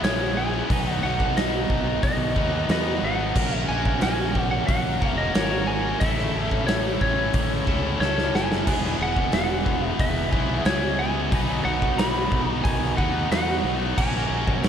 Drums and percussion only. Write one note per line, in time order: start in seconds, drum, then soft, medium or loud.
0.04 snare loud
0.04 open hi-hat medium
0.70 kick loud
0.70 open hi-hat medium
1.20 kick medium
1.37 snare loud
1.37 open hi-hat medium
1.70 kick medium
2.03 kick loud
2.03 open hi-hat medium
2.36 kick medium
2.69 snare medium
2.69 open hi-hat soft
3.36 kick loud
3.36 crash loud
3.85 kick medium
4.01 snare loud
4.01 open hi-hat medium
4.35 kick medium
4.68 kick loud
4.68 open hi-hat medium
5.02 kick medium
5.35 snare loud
5.35 open hi-hat medium
6.01 kick loud
6.01 open hi-hat medium
6.19 snare soft
6.51 kick medium
6.68 snare loud
6.68 open hi-hat medium
7.01 kick medium
7.33 kick loud
7.33 open hi-hat medium
7.67 kick medium
8.01 snare medium
8.18 snare medium
8.35 snare medium
8.52 snare medium
8.67 kick loud
8.67 open hi-hat medium
8.67 crash loud
8.85 snare soft
9.16 kick medium
9.32 snare loud
9.32 open hi-hat medium
9.66 kick medium
9.99 kick loud
9.99 open hi-hat medium
10.33 kick medium
10.65 snare loud
10.65 open hi-hat medium
11.32 kick loud
11.32 open hi-hat medium
11.82 kick medium
11.98 snare loud
11.98 open hi-hat medium
12.32 kick medium
12.65 kick loud
12.65 open hi-hat medium
12.98 kick medium
13.32 snare loud
13.32 open hi-hat medium
13.98 kick loud
13.98 crash loud
14.15 snare soft
14.47 kick medium
14.64 snare loud
14.64 open hi-hat medium